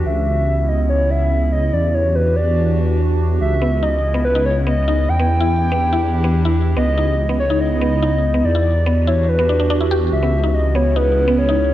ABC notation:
X:1
M:4/4
L:1/16
Q:1/4=143
K:Elyd
V:1 name="Soft synth lead"
e6 d2 c2 e4 d2 | =d2 c2 B2 d4 z6 | e4 d4 B2 c2 d4 | =g12- g2 z2 |
d6 c2 d8 | =d6 c2 B4 z4 | e4 d2 c2 B4 c4 |]
V:2 name="Synth arpeggio sound"
z16 | z16 | z2 B, z D z2 B, z D z2 B, z D z | z B, z E z2 B, z E z2 B, z E z2 |
B, z D z2 B, z D z2 B, z D z2 B, | z E z2 B, z E z2 B, =D D D E =G z | z B, z D z2 B, z D z2 B, z D z2 |]
V:3 name="Ambient pad"
[C,B,CE]16 | [E,=DF=G]16 | [C,B,CE]16 | [E,=DE=G]16 |
[C,B,DE]16 | [E,=DF=G]16 | [C,B,CE]16 |]
V:4 name="Detuned saw bass" clef=bass
C,,16 | E,,16 | C,,16 | E,,16 |
C,,16 | E,,16 | C,,16 |]